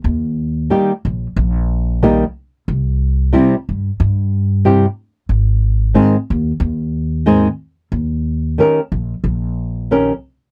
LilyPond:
<<
  \new Staff \with { instrumentName = "Nylon-string guitar" } { \time 4/4 \key ees \major \tempo 4 = 91 r4 <ees g bes ees' g'>8 r4. <ees g bes ees' g'>8 r8 | r4 <c g c' e' g'>8 r4. <c g c' e' g'>8 r8 | r4 <aes, ees aes c' ees' aes'>8 r4. <aes, ees aes c' ees' aes'>8 r8 | r4 <ees des' g' bes'>8 r4. <ees des' g' bes'>8 r8 | }
  \new Staff \with { instrumentName = "Upright bass" } { \clef bass \time 4/4 \key ees \major ees,4. bes,,8 bes,,2 | c,4. g,8 g,2 | aes,,4. ees,8 ees,2 | ees,4. bes,,8 bes,,2 | }
>>